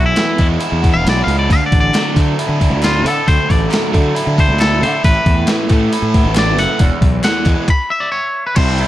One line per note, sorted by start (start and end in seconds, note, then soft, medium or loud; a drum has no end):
0.00 0.12 B1 medium
0.00 0.83 E2 medium
0.00 0.15 E3 medium
0.00 0.59 E4 medium
0.06 0.47 E4 medium
0.16 1.52 E3 medium
0.16 snare loud
0.16 open hi-hat medium
0.38 0.57 E2 medium
0.38 1.26 G#3 medium
0.38 kick medium
0.38 open hi-hat medium
0.59 1.04 E4 medium
0.59 open hi-hat medium
0.72 0.96 E2 medium
0.82 1.49 B3 medium
0.82 kick medium
0.82 open hi-hat medium
0.94 1.04 E1 medium
0.94 1.07 F5 loud
1.05 1.25 B1 medium
1.05 1.52 E4 medium
1.05 snare loud
1.05 open hi-hat medium
1.10 1.22 D5 medium
1.24 1.47 C#2 medium
1.24 1.50 G#3 medium
1.24 1.37 F5 medium
1.28 open hi-hat medium
1.39 1.51 D5 medium
1.49 1.58 D2 medium
1.49 2.60 D3 medium
1.49 1.66 F5 medium
1.49 kick loud
1.49 open hi-hat medium
1.66 1.79 D5 medium
1.71 1.89 A1 medium
1.71 kick medium
1.71 open hi-hat medium
1.80 2.23 D5 loud
1.94 3.05 F#3 medium
1.94 snare loud
1.94 clap medium
1.94 open hi-hat medium
2.16 2.34 D3 loud
2.16 3.03 A3 medium
2.16 kick medium
2.16 clap medium
2.16 open hi-hat medium
2.39 2.81 E4 medium
2.39 open hi-hat medium
2.49 2.72 D3 medium
2.60 3.71 D4 medium
2.60 kick medium
2.60 open hi-hat medium
2.70 3.05 D2 medium
2.82 4.15 E4 medium
2.82 3.05 F4 loud
2.82 snare loud
2.82 clap medium
2.82 open hi-hat medium
3.03 3.12 D3 loud
3.03 3.93 A3 medium
3.03 open hi-hat medium
3.08 3.28 A4 medium
3.26 3.36 D2 loud
3.26 4.37 D3 medium
3.26 3.52 C5 medium
3.26 kick loud
3.26 open hi-hat medium
3.50 3.67 A1 medium
3.50 4.36 D5 medium
3.50 kick medium
3.50 open hi-hat medium
3.70 4.81 F#3 medium
3.70 snare loud
3.70 clap medium
3.70 open hi-hat medium
3.93 4.11 D3 loud
3.93 4.80 A3 medium
3.93 kick medium
3.93 open hi-hat medium
4.15 4.59 E4 medium
4.15 open hi-hat medium
4.27 4.50 D3 medium
4.37 5.04 D4 medium
4.37 4.60 C5 medium
4.37 kick medium
4.37 open hi-hat medium
4.48 4.83 D2 medium
4.60 5.93 E4 medium
4.60 4.81 A4 medium
4.60 snare loud
4.60 clap medium
4.60 open hi-hat medium
4.81 4.90 D3 loud
4.81 5.04 A3 medium
4.81 5.04 C5 medium
4.81 open hi-hat medium
5.03 5.13 A1 medium
5.03 6.14 A2 medium
5.03 5.90 B4 medium
5.03 kick loud
5.03 open hi-hat medium
5.26 5.43 E2 medium
5.26 kick medium
5.26 open hi-hat medium
5.47 6.59 E3 medium
5.47 snare loud
5.47 clap medium
5.47 open hi-hat medium
5.70 5.87 A2 loud
5.70 6.56 A3 medium
5.70 kick medium
5.70 clap medium
5.70 open hi-hat medium
5.93 6.34 E4 medium
5.93 open hi-hat medium
6.02 6.25 A2 medium
6.14 6.81 B3 medium
6.14 kick medium
6.14 open hi-hat medium
6.24 6.55 A1 medium
6.35 6.80 E4 medium
6.35 6.59 D5 medium
6.35 snare loud
6.35 clap loud
6.35 open hi-hat medium
6.55 6.65 F#1 loud
6.55 6.80 A3 medium
6.55 7.02 F#5 medium
6.55 open hi-hat medium
6.79 6.89 E1 medium
6.79 7.68 E2 medium
6.79 kick loud
6.79 open hi-hat medium
7.01 7.19 B1 medium
7.01 kick medium
7.01 open hi-hat medium
7.24 7.69 E3 medium
7.24 7.67 F#5 medium
7.24 snare loud
7.24 clap medium
7.24 open hi-hat medium
7.45 7.55 E2 loud
7.45 7.69 G#3 medium
7.45 kick medium
7.45 clap medium
7.45 open hi-hat medium
7.68 7.91 B5 medium
7.68 kick loud
7.68 clap medium
7.90 8.55 E5 loud
8.00 8.11 D5 loud
8.12 8.46 C#5 loud
8.47 8.55 B4 medium
8.55 8.83 C2 medium
8.55 8.79 C3 loud
8.55 8.80 E3 medium
8.55 8.80 G3 loud
8.55 8.81 C4 loud
8.55 8.81 E4 medium
8.55 8.88 C5 medium
8.55 kick loud
8.55 crash loud
8.55 crash medium
8.78 8.88 C3 medium
8.78 8.88 E3 medium
8.78 8.88 G3 medium
8.78 8.88 C4 medium
8.78 8.88 E4 loud
8.78 crash medium